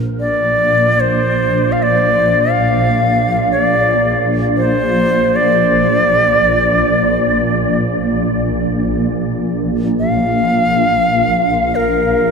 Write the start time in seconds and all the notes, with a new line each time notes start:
Already playing: A#1 A#2
0.20 D5
1.00 C5
1.72 F5
1.83 D5
2.51 F5
3.52 D5
4.58 C5
5.36 D5
9.99 F5
11.75 A#4